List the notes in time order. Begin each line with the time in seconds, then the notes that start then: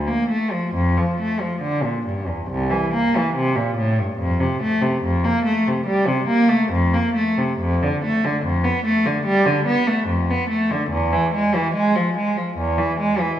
0.08 A#3
0.29 A3
0.51 F3
0.74 F2
0.97 F3
1.20 A3
1.41 F3
1.61 D3
1.83 A#2
2.06 G2
2.28 E2
2.50 C2
2.71 E3
2.94 A#3
3.17 E3
3.36 C3
3.56 A#2
3.77 A2
3.99 G2
4.18 F2
4.40 C3
4.62 A3
4.82 C3
5.04 F2
5.24 A#3
5.45 A3
5.67 C3
5.86 G3
6.07 C3
6.27 A#3
6.49 A3
6.72 F2
6.94 A#3
7.15 A3
7.38 C3
7.59 F2
7.83 D3
8.05 A3
8.25 D3
8.45 F2
8.64 B3
8.86 A3
9.06 D3
9.25 G3
9.46 D3
9.67 B3
9.87 A3
10.07 F2
10.30 B3
10.49 A3
10.71 D3
10.90 E2
11.13 E3
11.34 G#3
11.55 E3
11.74 G#3
11.96 F3
12.17 G#3
12.37 F3
12.58 E2
12.78 E3
13.00 G#3
13.20 E3